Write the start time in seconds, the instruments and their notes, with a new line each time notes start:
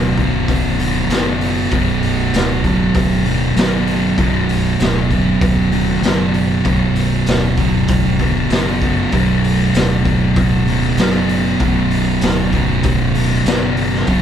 Already playing: fingered electric bass D1, distorted electric guitar B1 F#2 B2
0.17 distorted electric guitar B1 F#2 B2, kick, open hi-hat
0.48 fingered electric bass D1, kick, open hi-hat
0.80 distorted electric guitar B1 F#2 B2, open hi-hat
1.08 fingered electric bass F#1, distorted electric guitar B1 F#2, snare, open hi-hat
1.13 distorted electric guitar B2
1.41 open hi-hat
1.71 fingered electric bass B0, distorted electric guitar B1 F#2 B2, kick, open hi-hat
2.03 open hi-hat
2.32 fingered electric bass D1, snare, open hi-hat
2.64 distorted electric guitar B1 F#2 B2, kick, open hi-hat
2.94 fingered electric bass D1, kick, open hi-hat
3.25 distorted electric guitar B1 F#2 B2, open hi-hat
3.56 fingered electric bass F#1, distorted electric guitar B1 F#2 B2, snare, open hi-hat
3.88 open hi-hat
4.17 fingered electric bass B0, distorted electric guitar B1 F#2 B2, kick, open hi-hat
4.49 open hi-hat
4.79 fingered electric bass D1, snare, open hi-hat
5.11 distorted electric guitar B1 F#2 B2, kick, open hi-hat
5.41 fingered electric bass D1, kick, open hi-hat
5.72 distorted electric guitar B1 F#2 B2, open hi-hat
6.01 fingered electric bass F#1, distorted electric guitar B1 F#2 B2, open hi-hat
6.05 snare
6.34 open hi-hat
6.64 fingered electric bass B0, distorted electric guitar B1 F#2 B2, kick, open hi-hat
6.96 open hi-hat
7.26 fingered electric bass D1, snare, open hi-hat
7.57 distorted electric guitar B1 F#2 B2, kick, open hi-hat
7.88 fingered electric bass D1, kick, open hi-hat
8.19 distorted electric guitar B1 F#2 B2, kick, open hi-hat
8.50 fingered electric bass F#1, distorted electric guitar B1 F#2 B2, snare, open hi-hat
8.82 kick, open hi-hat
9.12 fingered electric bass B0, distorted electric guitar B1 F#2 B2, kick, open hi-hat
9.44 open hi-hat
9.74 fingered electric bass D1, snare, open hi-hat
10.05 distorted electric guitar B1 F#2 B2, kick, open hi-hat
10.36 fingered electric bass D1, kick, open hi-hat
10.68 distorted electric guitar B1 F#2 B2, open hi-hat
10.97 fingered electric bass F#1, distorted electric guitar B1 F#2 B2, snare, open hi-hat
11.29 open hi-hat
11.59 fingered electric bass B0, distorted electric guitar B1 F#2 B2, kick, open hi-hat
11.91 open hi-hat
12.21 fingered electric bass D1, snare, open hi-hat
12.52 distorted electric guitar B1 F#2 B2, kick, open hi-hat
12.83 fingered electric bass D1, kick, open hi-hat
13.15 distorted electric guitar B1 F#2 B2, open hi-hat
13.45 fingered electric bass F#1, distorted electric guitar B1 F#2 B2, snare, open hi-hat
13.77 open hi-hat
13.94 snare
14.07 fingered electric bass B0, distorted electric guitar B1 F#2 B2, kick, open hi-hat